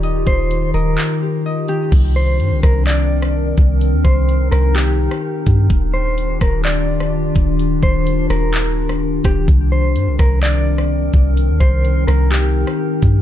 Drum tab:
CC |----------------|x---------------|----------------|----------------|
HH |x---x-x-x-----x-|x---x-x-x-----x-|x---x-x-x-----x-|x---x-x-x-----x-|
CP |--------x-------|--------x-------|--------x-------|--------x-------|
SD |----------------|------r----r----|------r----r----|------r----r----|
BD |--o-------------|o-----o-------o-|--o-----------o-|o-----o-------o-|

CC |----------------|----------------|----------------|
HH |x---x-x-x-----x-|x---x-x-x-----x-|x---x-x-x-----x-|
CP |--------x-------|--------x-------|--------x-------|
SD |------r----r--r-|------r----r----|------r----r----|
BD |--o-----------o-|o-----o-------o-|--o-----------o-|